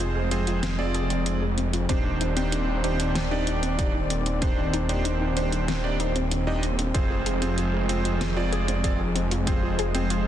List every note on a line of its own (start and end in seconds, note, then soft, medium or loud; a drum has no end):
0.00 1.86 F1 medium
0.00 1.85 F3 medium
0.00 1.85 G#3 medium
0.00 0.28 C4 medium
0.00 10.27 C4 medium
0.00 0.14 F4 medium
0.00 0.28 F4 medium
0.00 0.28 G#4 medium
0.00 0.28 C5 loud
0.00 closed hi-hat medium
0.15 0.25 G#4 medium
0.31 0.37 C4 medium
0.31 0.75 C4 medium
0.31 0.75 F4 medium
0.31 0.75 G#4 medium
0.31 0.75 C5 loud
0.31 closed hi-hat medium
0.47 0.61 F4 medium
0.47 closed hi-hat medium
0.63 0.69 C4 loud
0.63 snare loud
0.63 closed hi-hat loud
0.79 1.22 C4 medium
0.79 0.93 F4 medium
0.79 1.22 F4 medium
0.79 1.22 G#4 medium
0.79 1.22 D5 loud
0.94 1.04 G#4 loud
0.94 closed hi-hat medium
1.10 1.25 C4 loud
1.10 closed hi-hat medium
1.26 1.41 C4 medium
1.26 1.40 F4 medium
1.26 1.41 F4 medium
1.26 1.41 G#4 medium
1.26 1.41 D5 medium
1.26 closed hi-hat medium
1.42 1.51 G#4 medium
1.58 1.63 C4 medium
1.58 closed hi-hat medium
1.73 1.88 F4 medium
1.73 closed hi-hat medium
1.89 6.91 D#1 medium
1.89 6.90 D#3 medium
1.89 1.95 C4 loud
1.89 2.33 D4 medium
1.89 2.33 D#4 medium
1.89 2.33 G4 medium
1.89 2.33 C5 medium
1.89 6.90 D5 medium
1.89 kick loud
1.89 closed hi-hat medium
2.05 2.19 D4 medium
2.21 2.30 D#4 medium
2.21 closed hi-hat medium
2.36 2.51 C4 loud
2.36 2.80 D4 medium
2.36 2.80 D#4 medium
2.36 2.80 G4 medium
2.36 2.80 C5 loud
2.36 closed hi-hat medium
2.52 2.67 D4 medium
2.52 closed hi-hat medium
2.68 2.78 D#4 medium
2.84 2.90 C4 medium
2.84 3.28 D4 medium
2.84 3.28 D#4 medium
2.84 3.28 G4 medium
2.84 3.28 C5 loud
2.84 closed hi-hat medium
3.00 3.14 D4 medium
3.00 closed hi-hat medium
3.15 3.21 C4 loud
3.15 snare loud
3.15 closed hi-hat medium
3.31 3.46 D4 medium
3.31 3.75 D4 medium
3.31 3.75 D#4 medium
3.31 3.75 G4 medium
3.31 3.75 D5 loud
3.47 3.57 D#4 loud
3.47 closed hi-hat medium
3.63 3.77 C4 loud
3.63 closed hi-hat medium
3.79 3.93 D4 medium
3.79 3.93 D#4 medium
3.79 3.93 G4 medium
3.79 3.93 D5 medium
3.79 kick loud
3.79 closed hi-hat medium
3.95 4.04 D#4 medium
4.10 4.16 C4 medium
4.10 closed hi-hat medium
4.26 4.40 D4 medium
4.26 closed hi-hat medium
4.42 4.48 C4 loud
4.42 4.85 D4 medium
4.42 4.85 D#4 medium
4.42 4.85 G4 medium
4.42 4.85 C5 medium
4.42 kick loud
4.42 closed hi-hat medium
4.58 4.72 D4 medium
4.73 4.83 D#4 loud
4.73 closed hi-hat medium
4.89 5.04 C4 loud
4.89 5.33 D4 medium
4.89 5.33 D#4 medium
4.89 5.33 G4 medium
4.89 5.33 C5 loud
4.89 closed hi-hat medium
5.05 5.19 D4 medium
5.05 closed hi-hat medium
5.21 5.30 D#4 medium
5.37 5.42 C4 medium
5.37 5.80 D4 medium
5.37 5.80 D#4 medium
5.37 5.80 G4 medium
5.37 5.80 C5 loud
5.37 closed hi-hat medium
5.52 5.67 D4 medium
5.52 closed hi-hat medium
5.68 5.74 C4 loud
5.68 snare loud
5.68 closed hi-hat medium
5.84 5.97 D4 medium
5.84 5.98 D4 medium
5.84 5.97 D#4 medium
5.84 5.97 G4 medium
5.84 5.97 D5 loud
6.00 6.14 D4 medium
6.00 6.14 D#4 medium
6.00 6.09 D#4 loud
6.00 6.14 G4 medium
6.00 6.14 C5 medium
6.00 closed hi-hat medium
6.16 6.30 C4 loud
6.16 closed hi-hat medium
6.31 6.46 D4 medium
6.31 closed hi-hat medium
6.47 6.62 D4 medium
6.47 6.57 D#4 medium
6.47 6.62 D#4 medium
6.47 6.62 G4 medium
6.47 6.62 D#5 loud
6.63 6.69 C4 medium
6.63 closed hi-hat medium
6.79 6.93 D4 medium
6.79 closed hi-hat medium
6.94 10.27 F1 medium
6.94 10.27 F3 medium
6.94 10.27 G#3 medium
6.94 7.38 C4 medium
6.94 7.00 C4 loud
6.94 7.38 F4 medium
6.94 7.38 G#4 medium
6.94 7.38 C5 medium
6.94 kick loud
6.94 closed hi-hat medium
7.10 7.25 F4 medium
7.26 7.36 G#4 medium
7.26 closed hi-hat medium
7.42 7.85 C4 medium
7.42 7.56 C4 loud
7.42 7.85 F4 medium
7.42 7.85 G#4 medium
7.42 7.85 C5 loud
7.42 closed hi-hat medium
7.58 7.72 F4 medium
7.58 closed hi-hat medium
7.74 7.83 G#4 medium
7.89 8.33 C4 medium
7.89 7.95 C4 medium
7.89 8.33 F4 medium
7.89 8.33 G#4 medium
7.89 8.33 C5 loud
7.89 closed hi-hat medium
8.05 8.19 F4 medium
8.05 closed hi-hat medium
8.21 8.27 C4 loud
8.21 snare loud
8.21 closed hi-hat medium
8.37 8.80 C4 medium
8.37 8.80 F4 medium
8.37 8.51 F4 medium
8.37 8.80 G#4 medium
8.37 8.80 D5 loud
8.52 8.62 G#4 loud
8.52 closed hi-hat medium
8.68 8.83 C4 medium
8.68 closed hi-hat medium
8.84 8.99 C4 medium
8.84 8.99 F4 medium
8.84 8.98 F4 medium
8.84 8.99 G#4 medium
8.84 8.99 D5 medium
8.84 kick medium
8.84 closed hi-hat medium
9.00 9.09 G#4 medium
9.15 9.21 C4 medium
9.15 closed hi-hat medium
9.31 9.46 F4 medium
9.31 closed hi-hat medium
9.47 9.53 C4 loud
9.47 9.91 C4 medium
9.47 9.91 F4 medium
9.47 9.91 G#4 medium
9.47 9.91 C5 medium
9.47 kick loud
9.47 closed hi-hat medium
9.63 9.77 F4 medium
9.79 9.88 G#4 loud
9.79 closed hi-hat medium
9.94 10.27 C4 medium
9.94 10.09 C4 loud
9.94 10.27 F4 medium
9.94 10.27 G#4 medium
9.94 10.27 C5 loud
9.94 closed hi-hat medium
10.10 10.25 F4 medium
10.10 closed hi-hat medium